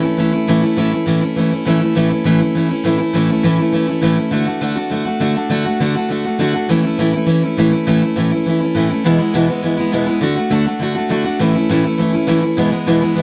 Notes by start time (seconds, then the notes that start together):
0.02 A3 C#4 E4
0.17 E3 A3 C#4 E4
0.32 A3 C#4 E4
0.47 A2 E3 A3 C#4 E4
0.61 A3 C#4 E4
0.76 A2 E3 A3 C#4 E4
0.91 A3 C#4 E4
1.06 A2 E3 A3 C#4 E4
1.21 A3 C#4 E4
1.36 E3 A3 C#4 E4
1.50 A3 C#4 E4
1.65 A2 E3 A3 C#4 E4
1.80 A3 C#4 E4
1.95 A2 E3 A3 C#4 E4
2.09 A3 C#4 E4
2.24 A2 E3 A3 C#4 E4
2.40 A3 C#4 E4
2.55 E3 A3 C#4 E4
2.69 A3 C#4 E4
2.84 A2 E3 A3 C#4 E4
2.98 A3 C#4 E4
3.13 A2 E3 A3 C#4 E4
3.28 A3 C#4 E4
3.43 A2 E3 A3 C#4 E4
3.58 A3 C#4 E4
3.73 E3 A3 C#4 E4
3.87 A3 C#4 E4
4.01 A2 E3 A3 C#4 E4
4.16 A3 C#4 E4
4.31 D3 A3 D4 F#4
4.45 A3 D4 F#4
4.61 D3 A3 D4 F#4
4.76 A3 D4 F#4
4.90 D3 A3 D4 F#4
5.05 A3 D4 F#4
5.20 D3 A3 D4 F#4
5.35 A3 D4 F#4
5.49 D3 A3 D4 F#4
5.65 A3 D4 F#4
5.80 D3 A3 D4 F#4
5.94 A3 D4 F#4
6.09 D3 A3 D4 F#4
6.24 A3 D4 F#4
6.39 D3 A3 D4 F#4
6.53 A3 D4 F#4
6.68 A2 E3 A3 C#4 E4
6.83 A3 C#4 E4
6.98 A2 E3 A3 C#4 E4
7.13 A3 C#4 E4
7.26 E3 A3 C#4 E4
7.42 A3 C#4 E4
7.57 A2 E3 A3 C#4 E4
7.71 A3 C#4 E4
7.87 A2 E3 A3 C#4 E4
8.02 A3 C#4 E4
8.16 A2 E3 A3 C#4 E4
8.31 A3 C#4 E4
8.46 E3 A3 C#4 E4
8.61 A3 C#4 E4
8.75 A2 E3 A3 C#4 E4
8.89 A3 C#4 E4
9.04 E2 B2 E3 G#3 B3 E4
9.19 E3 G#3 B3 E4
9.33 E2 B2 E3 G#3 B3 E4
9.48 E3 G#3 B3 E4
9.62 E3 G#3 B3 E4
9.77 E3 G#3 B3 E4
9.92 E2 B2 E3 G#3 B3 E4
10.06 E3 G#3 B3 E4
10.21 D3 A3 D4 F#4
10.35 A3 D4 F#4
10.50 D3 A3 D4 F#4
10.65 A3 D4 F#4
10.79 D3 A3 D4 F#4
10.95 A3 D4 F#4
11.09 D3 A3 D4 F#4
11.24 A3 D4 F#4
11.39 A2 E3 A3 C#4 E4
11.54 A3 C#4 E4
11.69 A2 E3 A3 C#4 E4
11.84 A3 C#4 E4
11.98 E3 A3 C#4 E4
12.13 A3 C#4 E4
12.27 A2 E3 A3 C#4 E4
12.41 A3 C#4 E4
12.57 E2 B2 E3 G#3 B3 E4
12.70 E3 G#3 B3 E4
12.87 E2 B2 E3 G#3 B3 E4
13.01 E3 G#3 B3 E4
13.15 E3 G#3 B3 E4